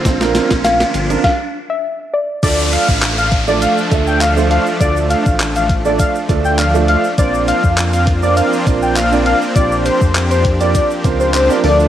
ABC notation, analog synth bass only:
X:1
M:4/4
L:1/16
Q:1/4=101
K:Dm
V:1 name="Analog synth bass" clef=bass
B,,,3 B,,,3 G,,,2 z8 | D,,3 A,,,6- A,,, D,,6 | D,,3 A,,,6- A,,, D,,6 | B,,,3 F,,6- F,, B,,,6 |
B,,,3 F,,6- F,, ^C,,4 D,,2 |]